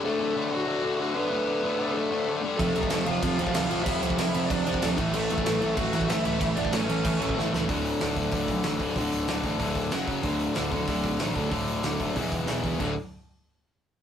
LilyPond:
<<
  \new Staff \with { instrumentName = "Lead electric guitar" } { \time 4/4 \key a \mixolydian \tempo 4 = 189 <a a'>4. <fis' fis''>4. <fis' fis''>8 <b b'>8~ | <b b'>2 <a a'>4. r8 | <a a'>4 <a a'>8 <f' f''>4. <f' f''>4 | <e' e''>2 <d' d''>4. r8 |
<a a'>2 <fis' fis''>4 <e' e''>8 <e' e''>8 | <e' e''>8 <d' d''>8 <cis' cis''>2 r4 | r1 | r1 |
r1 | r1 | r1 | }
  \new Staff \with { instrumentName = "Overdriven electric guitar" } { \clef bass \time 4/4 \key a \mixolydian r1 | r1 | <f, c f>8 <f, c f>8 <f, c f>8 <f, c f>8 <f, c f>8 <f, c f>8 <f, c f>8 <f, c f>8 | <f, c f>8 <f, c f>8 <f, c f>8 <f, c f>8 <f, c f>8 <f, c f>8 <f, c f>8 <a, e a>8 |
<a, e a>8 <a, e a>8 <a, e a>8 <a, e a>8 <a, e a>8 <a, e a>8 <a, e a>8 <a, e a>8 | <a, e a>8 <a, e a>8 <a, e a>8 <a, e a>8 <a, e a>8 <a, e a>8 <a, e a>8 <a, e a>8 | <d, a, d>4 <d, a, d>8 <d, a, d>8 <d, a, d>4 <d, a, d>8 <d, a, d>8 | <d, a, d>4 <d, a, d>8 <d, a, d>8 <d, a, d>4 <fis, cis fis>8 <fis, cis fis>8 |
<d, a, d>4 <d, a, d>8 <d, a, d>8 <d, a, d>4 <d, a, d>8 <d, a, d>8 | <d, a, d>4 <d, a, d>8 <d, a, d>8 <e, b, e>4 <e, b, e>8 <e, b, e>8 | <d, a, d>8 r2. r8 | }
  \new Staff \with { instrumentName = "Distorted electric guitar" } { \clef bass \time 4/4 \key a \mixolydian <d, a, d>8 <d, a, d>8 <d, a, d>8 <d, a, d>8 <d, a, d>8 <d, a, d>8 <d, a, d>8 <d, a, d>8 | <d, a, d>8 <d, a, d>8 <d, a, d>8 <d, a, d>8 <d, a, d>8 <d, a, d>8 <d, a, d>8 <g, d g>8 | <f, c f>8 <f, c f>8 <f, c f>8 <f, c f>8 <f, c f>8 <f, c f>8 <f, c f>8 <f, c f>8 | <f, c f>8 <f, c f>8 <f, c f>8 <f, c f>8 <f, c f>8 <f, c f>8 <f, c f>8 <a, e a>8 |
<a, e a>8 <a, e a>8 <a, e a>8 <a, e a>8 <a, e a>8 <a, e a>8 <a, e a>8 <a, e a>8 | <a, e a>8 <a, e a>8 <a, e a>8 <a, e a>8 <a, e a>8 <a, e a>8 <a, e a>8 <a, e a>8 | <d, a, d>4 <d, a, d>8 <d, a, d>8 <d, a, d>4 <d, a, d>8 <d, a, d>8 | <d, a, d>4 <d, a, d>8 <d, a, d>8 <d, a, d>4 <fis, cis fis>8 <fis, cis fis>8 |
<d, a, d>4 <d, a, d>8 <d, a, d>8 <d, a, d>4 <d, a, d>8 <d, a, d>8 | <d, a, d>4 <d, a, d>8 <d, a, d>8 <e, b, e>4 <e, b, e>8 <e, b, e>8 | <d, a, d>8 r2. r8 | }
  \new Staff \with { instrumentName = "Picked electric bass" } { \clef bass \time 4/4 \key a \mixolydian r1 | r1 | f,,8 c,8 f,,8 f,,8 f,,8 f,,8 d,,8 a,,8 | f,,8 c,8 f,,8 f,,8 f,,8 f,,8 d,,8 a,,8 |
a,,8 e,,8 a,,8 a,,8 a,,8 a,,8 g,,8 cis,8 | a,,8 e,,8 a,,8 a,,8 a,,8 a,,8 g,,8 cis,8 | d,,4 d,,4 d,,8 b,,8 a,,8 d,8 | d,,8 d,,8 d,,8 a,,8 d,,8 d,,8 fis,,8 fis,,8 |
d,,4 d,,4 d,,8 b,,8 a,,8 d,8 | d,,8 d,,8 d,,8 fis,,8 e,,8 e,,8 e,,8 cis,8 | d,,8 r2. r8 | }
  \new DrumStaff \with { instrumentName = "Drums" } \drummode { \time 4/4 r4 r4 r4 r4 | r4 r4 r4 r4 | <cymc bd>8 cymc16 bd16 <cymc sn>8 cymc8 <cymc bd>8 cymc16 bd16 <cymc sn>8 cymc8 | <cymc bd>8 cymc16 bd16 <cymc sn>8 cymc8 <cymc bd>8 cymc16 bd16 <cymc sn>8 <cymc bd>8 |
cymc8 cymc16 bd16 <cymc sn>8 cymc8 <cymc bd>8 cymc16 bd16 <cymc sn>8 cymc8 | <cymc bd>8 cymc16 bd16 <cymc sn>8 cymc8 <cymc bd>8 cymc16 bd16 sn8 sn8 | <hho bd>8 hho8 <hho sn>8 <hho bd>8 <hho bd>8 <hho bd>8 <hho sn>8 <hho bd>8 | <hho bd>8 hho8 <hho sn>8 <hho bd>8 <hho bd>8 <hho bd>8 <hho sn>8 <hho bd>8 |
<hho bd>8 hho8 <hho sn>8 <hho bd>8 <hho bd>8 <hho bd>8 <hho sn>8 <hho bd>8 | <hho bd>8 hho8 <hho sn>8 <hho bd>8 <hho bd>8 <hho bd>8 <hho sn>8 <hho bd>8 | <cymc bd>4 r4 r4 r4 | }
>>